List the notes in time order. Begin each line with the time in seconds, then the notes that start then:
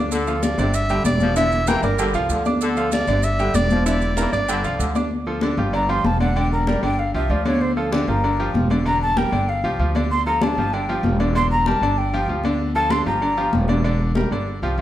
Already playing: D2 D4 D5 D6
0.11 D3 A4, high conga, maracas
0.27 F3 F4 F5, high conga, maracas
0.43 D5, high conga, maracas
0.57 G1 C3 D3 D4 D5, high conga, maracas
0.74 E5, high conga, maracas
0.89 D3 G3 G4 G5, high conga, maracas
1.04 E1 D4 D5 D6, high conga, maracas
1.20 F3, high conga, maracas
1.36 D3 E4 E5, high conga, maracas
1.52 high conga, maracas
1.67 E3 A#3 A#4 G5 A#5, high conga, maracas
1.83 G1 D4 A#4 D5 D6, maracas
1.99 D3 G3 G4 G5, high conga, maracas
2.14 C2 F3 F4 F5, high conga, maracas
2.29 D2 D3, high conga, maracas
2.45 D4 D5 D6, high conga, maracas
2.61 D3 A4, high conga, maracas
2.77 F3 F4 F5, maracas
2.92 D5, high conga, maracas
3.07 G1 C3 D3 D4 D5, high conga, maracas
3.23 E5, high conga, maracas
3.39 D3 G3 G4 G5, high conga, maracas
3.54 E1 D4 D5 D6, high conga, maracas
3.70 F3, high conga, maracas
3.86 D3 E4 D5 E5, maracas
4.01 high conga, maracas
4.17 E3 A#3 A#4 A#5, high conga, maracas
4.32 G1 D4 D5 D6, maracas
4.48 D3 G3 G4 G5, high conga, maracas
4.64 C2 F3 F4 F5, high conga, maracas
4.79 D2 D3, high conga, maracas
4.95 D4 D5 D6, high conga, maracas
5.11 high conga
5.26 F3 F4 A4, high conga
5.41 D3 D4 D5, high conga
5.57 G1 F3 F4 G4, high conga
5.73 D3 D4 D5 A#5, high conga
5.89 F3 F4 G4 C6, high conga
6.04 E1 A5, high conga
6.20 D3 D4 D5 F#5, high conga
6.36 D3 D4 D5 G5, high conga
6.52 A#4, high conga
6.67 G3 G4 A#4 D5, high conga
6.83 G1 D3 D4 D5 G5
6.99 F5, high conga
7.14 C2 F3 F4 G4 E5, high conga
7.30 D2 F3 F4 G4 D5, high conga
7.45 D3 D4 C#5 D5, high conga
7.61 C5, high conga
7.75 F3 F4 A4, high conga
7.91 D3 D4 G4 D5, high conga
8.07 G1 F3 F4 G4 A#4, high conga
8.24 D3 D4 D5, high conga
8.39 F3 F4 G4, high conga
8.54 E1, high conga
8.70 D3 D4 D5, high conga
8.85 D3 D4 D5 A#5, high conga
9.01 A5, high conga
9.17 G3 G4 A#4 G5, high conga
9.32 G1 D3 D4 D5
9.48 F5, high conga
9.64 C2 F3 F4 G4, high conga
9.79 D2 F3 F4 G4, high conga
9.95 D3 D4 D5, high conga
10.11 C6, high conga
10.26 F3 F4 A4 A#5, high conga
10.41 D3 D4 D5 A5, high conga
10.57 G1 F3 F4 G4, high conga
10.73 D3 D4 D5 G5, high conga
10.89 F3 F4 G4, high conga
11.03 E1, high conga
11.20 D3 D4 D5, high conga
11.35 D3 D4 D5 C6, high conga
11.51 A#5, high conga
11.66 G3 G4 A#4 A5, high conga
11.81 G1 D3 D4 D5
11.97 G5, high conga
12.13 F3 F4 G4, high conga
12.28 D2 F3 F4 G4, high conga
12.44 D3 D4 D5, high conga
12.59 high conga
12.75 F3 F4 A4 A5, high conga
12.90 D3 D4 D5 C6, high conga
13.06 G1 F3 F4 G4 A#5, high conga
13.22 D3 D4 D5, high conga
13.37 F3 F4 G4, high conga
13.53 E1, high conga
13.68 D3 D4 D5, high conga
13.84 D3 D4 D5, high conga
14.00 high conga
14.15 G3 G4 A#4, high conga
14.31 G1 D3 D4 D5
14.47 high conga
14.62 C2 F3 F4 G4, high conga
14.78 D2, high conga